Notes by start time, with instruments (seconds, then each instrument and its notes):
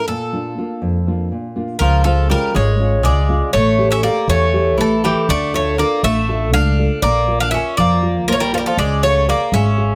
0.08 nylon-string guitar A#2, bouzouki A4
0.33 nylon-string guitar A#3 D4 F4
0.58 nylon-string guitar A#3 D4 F4
0.82 nylon-string guitar F2
1.07 nylon-string guitar A#3 D4 F4
1.32 nylon-string guitar A#2
1.56 nylon-string guitar A#3 D4 F4
1.79 upright bass C#2, nylon-string guitar C#3, bouzouki F3 A#4
2.04 bouzouki F3 A4, nylon-string guitar G#3 C#4 F4
2.30 bouzouki G3 A#4, nylon-string guitar G#3 C#4 F4
2.54 upright bass G#1, nylon-string guitar G#3, bouzouki G#3 C#5
2.79 nylon-string guitar G#3 C#4 F4
3.03 upright bass C#2, nylon-string guitar C#3, bouzouki G#3 D5
3.28 nylon-string guitar G#3 C#4 F4
3.53 upright bass A1, bouzouki A3 C#5, nylon-string guitar A3
3.78 nylon-string guitar G4 A4 C#5
3.90 bouzouki C#4 E5
4.03 bouzouki A#3 D5, nylon-string guitar G4 A4 C#5
4.28 upright bass E2, nylon-string guitar E3, bouzouki A3 C#5
4.53 nylon-string guitar G4 A4 C#5
4.78 upright bass A1, bouzouki E3 A4, nylon-string guitar A3
5.04 bouzouki E3 G4, nylon-string guitar G4 A4 C#5
5.29 upright bass D2, nylon-string guitar D3, bouzouki A3 D5
5.54 bouzouki A3 C#5, nylon-string guitar D4 F4 A4
5.78 bouzouki A#3 D5, nylon-string guitar D4 F4 A4
6.03 upright bass A1, nylon-string guitar A3, bouzouki A3 E5
6.28 nylon-string guitar D4 F4 A4
6.52 upright bass C#2, nylon-string guitar D4, bouzouki D4 F5
6.78 nylon-string guitar D4 F4 A4
7.02 upright bass A#1, bouzouki A#3 D5, nylon-string guitar A#3
7.27 nylon-string guitar F4 A#4 D5
7.40 bouzouki D4 F5
7.51 bouzouki C#4 E5, nylon-string guitar F4 A#4 D5
7.77 upright bass F2, nylon-string guitar F3, bouzouki A#3 D5
8.03 nylon-string guitar F4 A#4 D5
8.28 upright bass A#1, bouzouki F3 A#4, nylon-string guitar A#3
8.32 bouzouki A3 C#5
8.40 bouzouki G3 A#4
8.53 bouzouki F3 A4, nylon-string guitar F4 A#4 D5
8.58 bouzouki G3 A#4
8.66 bouzouki F3 A4
8.77 upright bass C#2, bouzouki G#3 D5, nylon-string guitar C#4
9.03 bouzouki A3 C#5, nylon-string guitar G#4 F5
9.28 bouzouki A#3 D5, nylon-string guitar G#4 C#5 F5
9.52 upright bass G#1, nylon-string guitar G#3, bouzouki C#4 E5
9.77 nylon-string guitar G#4 C#5 F5